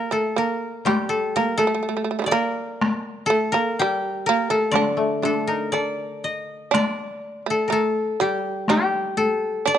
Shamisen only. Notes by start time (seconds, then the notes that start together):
Already playing: A#3
0.11 A3
0.36 A#3
0.87 G3
1.37 A#3
1.59 A3
1.67 A3
1.75 A3
1.83 A3
1.89 A3
1.97 A3
2.04 A3
2.11 A3
2.19 D3 D#3 A3
2.24 G3 A3
2.32 A#3
3.30 A3
3.54 A#3
3.82 G3
4.29 A#3
4.50 A3
4.75 D4
5.23 A3
5.74 D4
6.71 D4
7.46 A3
7.70 A3
8.20 G3
8.70 G3
9.66 D4
9.75 D4